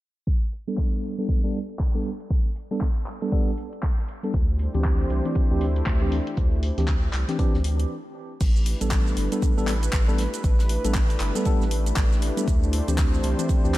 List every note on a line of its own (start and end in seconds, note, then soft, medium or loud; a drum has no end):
0.27 kick loud
0.27 closed hi-hat medium
0.52 closed hi-hat medium
0.52 open hi-hat loud
0.68 1.15 G3 medium
0.68 1.15 B3 medium
0.68 1.15 D4 medium
0.68 1.15 A4 medium
0.68 closed hi-hat medium
0.68 closed hi-hat soft
0.78 kick loud
0.78 snare loud
0.78 clap loud
0.94 snare soft
1.03 closed hi-hat medium
1.03 open hi-hat medium
1.18 1.40 G3 medium
1.18 1.40 B3 medium
1.18 1.40 D4 medium
1.18 1.40 A4 medium
1.18 closed hi-hat medium
1.29 kick loud
1.29 closed hi-hat medium
1.44 1.58 G3 medium
1.44 1.58 B3 medium
1.44 1.58 D4 medium
1.44 1.58 A4 medium
1.54 closed hi-hat medium
1.54 open hi-hat medium
1.69 closed hi-hat medium
1.79 kick loud
1.79 snare loud
1.79 clap loud
1.79 closed hi-hat medium
1.95 2.09 G3 medium
1.95 2.09 B3 medium
1.95 2.09 D4 medium
1.95 2.09 A4 medium
2.05 closed hi-hat medium
2.05 open hi-hat medium
2.20 closed hi-hat medium
2.30 kick loud
2.30 closed hi-hat medium
2.30 closed hi-hat soft
2.55 closed hi-hat medium
2.55 open hi-hat loud
2.71 2.85 G3 medium
2.71 2.85 B3 medium
2.71 2.85 D4 medium
2.71 2.85 A4 medium
2.71 snare soft
2.71 closed hi-hat medium
2.80 kick loud
2.80 snare loud
2.80 clap loud
2.80 closed hi-hat medium
3.06 clap medium
3.06 closed hi-hat medium
3.06 open hi-hat loud
3.22 3.31 G3 medium
3.22 3.31 B3 medium
3.22 3.31 D4 medium
3.22 3.31 A4 medium
3.22 snare soft
3.22 closed hi-hat medium
3.31 3.50 G3 medium
3.31 3.50 B3 medium
3.31 3.50 D4 medium
3.31 3.50 A4 loud
3.31 kick loud
3.31 closed hi-hat medium
3.31 closed hi-hat soft
3.47 snare soft
3.58 closed hi-hat medium
3.58 open hi-hat loud
3.73 closed hi-hat medium
3.83 kick loud
3.83 snare loud
3.83 clap loud
3.83 closed hi-hat medium
3.83 closed hi-hat soft
3.98 snare soft
4.08 closed hi-hat medium
4.08 open hi-hat loud
4.23 4.33 G3 medium
4.23 4.33 B3 medium
4.23 4.33 D4 medium
4.23 4.33 A4 medium
4.23 closed hi-hat medium
4.34 4.68 D2 medium
4.34 7.86 A3 medium
4.34 7.86 D4 medium
4.34 7.86 E4 medium
4.34 7.86 G4 medium
4.34 7.86 C5 medium
4.34 kick loud
4.34 closed hi-hat soft
4.34 closed hi-hat medium
4.58 closed hi-hat medium
4.58 open hi-hat loud
4.74 5.06 D2 medium
4.74 5.22 E3 medium
4.74 5.22 C4 medium
4.74 5.22 D4 medium
4.74 5.22 G4 medium
4.74 closed hi-hat medium
4.74 closed hi-hat soft
4.84 kick loud
4.84 snare loud
4.84 clap loud
4.84 closed hi-hat soft
4.84 closed hi-hat medium
5.00 snare soft
5.10 5.21 C2 medium
5.10 closed hi-hat medium
5.10 open hi-hat loud
5.25 5.47 E3 medium
5.25 5.47 C4 medium
5.25 5.47 D4 medium
5.25 5.47 G4 medium
5.25 closed hi-hat medium
5.35 kick loud
5.35 closed hi-hat medium
5.35 closed hi-hat soft
5.51 5.82 D2 medium
5.51 5.65 E3 medium
5.51 5.65 C4 medium
5.51 5.65 D4 medium
5.51 5.65 G4 medium
5.61 closed hi-hat medium
5.61 open hi-hat loud
5.76 closed hi-hat medium
5.86 6.20 D2 medium
5.86 kick loud
5.86 snare loud
5.86 clap loud
5.86 closed hi-hat medium
5.86 closed hi-hat soft
6.01 6.16 E3 medium
6.01 6.16 C4 medium
6.01 6.16 D4 medium
6.01 6.16 G4 medium
6.12 closed hi-hat medium
6.12 open hi-hat loud
6.27 closed hi-hat medium
6.37 6.71 D2 medium
6.37 kick loud
6.37 closed hi-hat medium
6.37 closed hi-hat soft
6.63 closed hi-hat medium
6.63 open hi-hat loud
6.78 7.09 D2 medium
6.78 6.92 E3 medium
6.78 6.92 C4 medium
6.78 6.92 D4 medium
6.78 6.92 G4 medium
6.78 snare soft
6.78 closed hi-hat medium
6.88 kick loud
6.88 snare loud
6.88 clap loud
6.88 closed hi-hat medium
6.88 closed hi-hat soft
7.13 7.25 C2 medium
7.13 clap medium
7.13 closed hi-hat medium
7.13 open hi-hat loud
7.29 7.37 E3 medium
7.29 7.37 C4 medium
7.29 7.38 D4 medium
7.29 7.38 G4 medium
7.29 snare soft
7.29 closed hi-hat medium
7.39 7.57 E3 medium
7.39 7.57 C4 medium
7.39 7.57 D4 medium
7.39 7.57 G4 loud
7.39 kick loud
7.39 closed hi-hat soft
7.39 closed hi-hat medium
7.54 7.85 D2 medium
7.54 snare soft
7.64 closed hi-hat medium
7.64 open hi-hat loud
7.79 closed hi-hat medium
8.41 8.75 A1 medium
8.41 13.78 A3 medium
8.41 13.78 D4 medium
8.41 13.78 E4 medium
8.41 13.78 G4 medium
8.41 12.43 B4 medium
8.41 kick loud
8.41 closed hi-hat medium
8.41 crash medium
8.41 shaker medium
8.56 shaker soft
8.66 closed hi-hat medium
8.66 open hi-hat loud
8.81 9.12 A1 medium
8.81 9.28 G3 medium
8.81 9.28 B3 medium
8.81 9.29 D4 medium
8.81 9.29 A4 medium
8.81 closed hi-hat medium
8.81 closed hi-hat soft
8.81 shaker medium
8.91 kick loud
8.91 snare loud
8.91 clap loud
8.91 closed hi-hat medium
8.91 shaker medium
9.07 snare soft
9.07 shaker soft
9.17 9.28 G1 medium
9.17 closed hi-hat medium
9.17 open hi-hat loud
9.32 9.54 G3 medium
9.32 9.54 B3 medium
9.32 9.54 D4 medium
9.32 9.54 A4 medium
9.32 closed hi-hat medium
9.32 shaker medium
9.42 kick loud
9.42 closed hi-hat medium
9.42 shaker medium
9.57 9.89 A1 medium
9.57 9.72 G3 medium
9.57 9.72 B3 medium
9.57 9.72 D4 medium
9.57 9.72 A4 medium
9.57 shaker soft
9.67 clap medium
9.67 closed hi-hat medium
9.67 open hi-hat loud
9.83 closed hi-hat medium
9.83 shaker medium
9.93 10.27 A1 medium
9.93 kick loud
9.93 snare loud
9.93 clap loud
9.93 closed hi-hat medium
9.93 shaker medium
10.08 10.22 G3 medium
10.08 10.23 B3 medium
10.08 10.23 D4 medium
10.08 10.23 A4 medium
10.08 shaker soft
10.18 snare loud
10.18 closed hi-hat medium
10.18 open hi-hat loud
10.34 snare soft
10.34 closed hi-hat medium
10.34 shaker medium
10.44 10.78 A1 medium
10.44 kick loud
10.44 closed hi-hat medium
10.44 shaker medium
10.59 snare loud
10.59 closed hi-hat medium
10.59 shaker soft
10.69 snare soft
10.69 open hi-hat loud
10.84 11.16 A1 medium
10.84 10.99 G3 medium
10.84 10.99 B3 medium
10.84 10.99 D4 medium
10.84 10.99 A4 medium
10.84 closed hi-hat medium
10.84 shaker medium
10.95 kick loud
10.95 snare loud
10.95 clap loud
10.95 closed hi-hat soft
10.95 closed hi-hat medium
10.95 shaker soft
11.10 open hi-hat medium
11.10 shaker soft
11.20 11.31 G1 medium
11.20 clap medium
11.20 closed hi-hat medium
11.20 open hi-hat loud
11.35 11.44 G3 medium
11.35 11.44 B3 medium
11.35 11.44 D4 medium
11.35 11.44 A4 medium
11.35 snare soft
11.35 closed hi-hat medium
11.35 shaker medium
11.45 11.64 G3 medium
11.45 11.64 B3 medium
11.45 11.64 D4 medium
11.45 11.64 A4 loud
11.45 kick loud
11.45 closed hi-hat medium
11.45 shaker medium
11.61 11.92 A1 medium
11.61 snare soft
11.61 shaker soft
11.71 closed hi-hat medium
11.71 open hi-hat loud
11.86 closed hi-hat medium
11.86 shaker medium
11.96 12.31 A1 medium
11.96 kick loud
11.96 snare loud
11.96 clap loud
11.96 closed hi-hat medium
11.96 closed hi-hat soft
11.96 shaker medium
12.12 snare soft
12.12 shaker soft
12.22 closed hi-hat medium
12.22 open hi-hat loud
12.37 12.46 G3 medium
12.37 12.46 B3 medium
12.37 12.46 D4 medium
12.37 12.46 A4 medium
12.37 closed hi-hat medium
12.37 shaker medium
12.48 12.81 D2 medium
12.48 13.78 C5 medium
12.48 kick loud
12.48 closed hi-hat soft
12.48 closed hi-hat medium
12.48 shaker medium
12.63 shaker soft
12.73 closed hi-hat medium
12.73 open hi-hat loud
12.88 13.19 D2 medium
12.88 13.35 E3 medium
12.88 13.35 C4 medium
12.88 13.35 D4 medium
12.88 13.35 G4 medium
12.88 closed hi-hat medium
12.88 closed hi-hat soft
12.88 shaker medium
12.98 kick loud
12.98 snare loud
12.98 clap loud
12.98 closed hi-hat soft
12.98 closed hi-hat medium
12.98 shaker soft
13.14 snare soft
13.14 shaker soft
13.23 13.35 C2 medium
13.23 closed hi-hat medium
13.23 open hi-hat loud
13.39 13.61 E3 medium
13.39 13.61 C4 medium
13.39 13.61 D4 medium
13.39 13.61 G4 medium
13.39 closed hi-hat medium
13.39 shaker medium
13.49 kick loud
13.49 closed hi-hat medium
13.49 closed hi-hat soft
13.49 shaker medium
13.64 13.78 D2 medium
13.64 13.78 E3 medium
13.64 13.78 C4 medium
13.64 13.78 D4 medium
13.64 13.78 G4 medium
13.64 shaker soft
13.74 clap medium
13.74 closed hi-hat medium